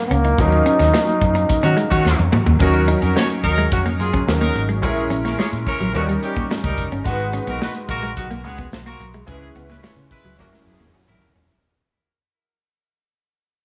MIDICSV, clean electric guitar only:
0, 0, Header, 1, 3, 480
1, 0, Start_track
1, 0, Key_signature, -6, "minor"
1, 0, Tempo, 555556
1, 332, Time_signature, 4, 2, 24, 8
1, 11788, End_track
2, 0, Start_track
2, 0, Title_t, "Clean electric guitar"
2, 0, Program_c, 0, 27
2, 96, Note_on_c, 0, 61, 71
2, 170, Note_off_c, 0, 61, 0
2, 213, Note_on_c, 0, 63, 72
2, 287, Note_off_c, 0, 63, 0
2, 570, Note_on_c, 0, 61, 79
2, 645, Note_off_c, 0, 61, 0
2, 686, Note_on_c, 0, 61, 85
2, 763, Note_off_c, 0, 61, 0
2, 809, Note_on_c, 0, 58, 88
2, 884, Note_off_c, 0, 58, 0
2, 1167, Note_on_c, 0, 63, 72
2, 1243, Note_off_c, 0, 63, 0
2, 1410, Note_on_c, 0, 61, 80
2, 1485, Note_off_c, 0, 61, 0
2, 1527, Note_on_c, 0, 56, 88
2, 1603, Note_off_c, 0, 56, 0
2, 2008, Note_on_c, 0, 58, 79
2, 2083, Note_off_c, 0, 58, 0
2, 2129, Note_on_c, 0, 58, 80
2, 2205, Note_off_c, 0, 58, 0
2, 2488, Note_on_c, 0, 63, 100
2, 2564, Note_off_c, 0, 63, 0
2, 2610, Note_on_c, 0, 61, 74
2, 2686, Note_off_c, 0, 61, 0
2, 2730, Note_on_c, 0, 58, 82
2, 2806, Note_off_c, 0, 58, 0
2, 3093, Note_on_c, 0, 56, 74
2, 3167, Note_off_c, 0, 56, 0
2, 3333, Note_on_c, 0, 58, 72
2, 3407, Note_off_c, 0, 58, 0
2, 3573, Note_on_c, 0, 61, 82
2, 3647, Note_off_c, 0, 61, 0
2, 3813, Note_on_c, 0, 58, 71
2, 3887, Note_off_c, 0, 58, 0
2, 4052, Note_on_c, 0, 56, 68
2, 4127, Note_off_c, 0, 56, 0
2, 4410, Note_on_c, 0, 61, 77
2, 4485, Note_off_c, 0, 61, 0
2, 4536, Note_on_c, 0, 58, 75
2, 4610, Note_off_c, 0, 58, 0
2, 4656, Note_on_c, 0, 56, 88
2, 4730, Note_off_c, 0, 56, 0
2, 5016, Note_on_c, 0, 54, 70
2, 5090, Note_off_c, 0, 54, 0
2, 5260, Note_on_c, 0, 55, 75
2, 5333, Note_off_c, 0, 55, 0
2, 5500, Note_on_c, 0, 58, 68
2, 5573, Note_off_c, 0, 58, 0
2, 5622, Note_on_c, 0, 61, 75
2, 5694, Note_off_c, 0, 61, 0
2, 5981, Note_on_c, 0, 61, 69
2, 6053, Note_off_c, 0, 61, 0
2, 6338, Note_on_c, 0, 61, 88
2, 6411, Note_off_c, 0, 61, 0
2, 6458, Note_on_c, 0, 59, 79
2, 6531, Note_off_c, 0, 59, 0
2, 6579, Note_on_c, 0, 58, 83
2, 6652, Note_off_c, 0, 58, 0
2, 6936, Note_on_c, 0, 56, 59
2, 7010, Note_off_c, 0, 56, 0
2, 7177, Note_on_c, 0, 58, 75
2, 7251, Note_off_c, 0, 58, 0
2, 7415, Note_on_c, 0, 59, 84
2, 7490, Note_off_c, 0, 59, 0
2, 7657, Note_on_c, 0, 58, 62
2, 7731, Note_off_c, 0, 58, 0
2, 7900, Note_on_c, 0, 56, 72
2, 7973, Note_off_c, 0, 56, 0
2, 8259, Note_on_c, 0, 59, 69
2, 8332, Note_off_c, 0, 59, 0
2, 8378, Note_on_c, 0, 58, 80
2, 8452, Note_off_c, 0, 58, 0
2, 8497, Note_on_c, 0, 56, 85
2, 8571, Note_off_c, 0, 56, 0
2, 8855, Note_on_c, 0, 54, 69
2, 8929, Note_off_c, 0, 54, 0
2, 9096, Note_on_c, 0, 56, 66
2, 9170, Note_off_c, 0, 56, 0
2, 9332, Note_on_c, 0, 58, 62
2, 9408, Note_off_c, 0, 58, 0
2, 9457, Note_on_c, 0, 61, 70
2, 9531, Note_off_c, 0, 61, 0
2, 9812, Note_on_c, 0, 61, 68
2, 9888, Note_off_c, 0, 61, 0
2, 11788, End_track
3, 0, Start_track
3, 0, Title_t, "Muted clean electric guitar strokes"
3, 454, Note_on_c, 9, 29, 42
3, 540, Note_off_c, 9, 29, 0
3, 1051, Note_on_c, 9, 29, 47
3, 1137, Note_off_c, 9, 29, 0
3, 1289, Note_on_c, 9, 29, 49
3, 1375, Note_off_c, 9, 29, 0
3, 1771, Note_on_c, 9, 29, 46
3, 1857, Note_off_c, 9, 29, 0
3, 2367, Note_on_c, 9, 29, 44
3, 2454, Note_off_c, 9, 29, 0
3, 2971, Note_on_c, 9, 29, 42
3, 3057, Note_off_c, 9, 29, 0
3, 3456, Note_on_c, 9, 29, 43
3, 3542, Note_off_c, 9, 29, 0
3, 3933, Note_on_c, 9, 29, 43
3, 4020, Note_off_c, 9, 29, 0
3, 4292, Note_on_c, 9, 29, 44
3, 4379, Note_off_c, 9, 29, 0
3, 4898, Note_on_c, 9, 29, 43
3, 4984, Note_off_c, 9, 29, 0
3, 5378, Note_on_c, 9, 29, 52
3, 5464, Note_off_c, 9, 29, 0
3, 5742, Note_on_c, 9, 29, 43
3, 5829, Note_off_c, 9, 29, 0
3, 6222, Note_on_c, 9, 29, 40
3, 6309, Note_off_c, 9, 29, 0
3, 6817, Note_on_c, 9, 29, 50
3, 6904, Note_off_c, 9, 29, 0
3, 7293, Note_on_c, 9, 29, 48
3, 7379, Note_off_c, 9, 29, 0
3, 7779, Note_on_c, 9, 29, 42
3, 7866, Note_off_c, 9, 29, 0
3, 8140, Note_on_c, 9, 29, 39
3, 8227, Note_off_c, 9, 29, 0
3, 8734, Note_on_c, 9, 29, 46
3, 8821, Note_off_c, 9, 29, 0
3, 9214, Note_on_c, 9, 29, 47
3, 9300, Note_off_c, 9, 29, 0
3, 9573, Note_on_c, 9, 29, 45
3, 9659, Note_off_c, 9, 29, 0
3, 11788, End_track
0, 0, End_of_file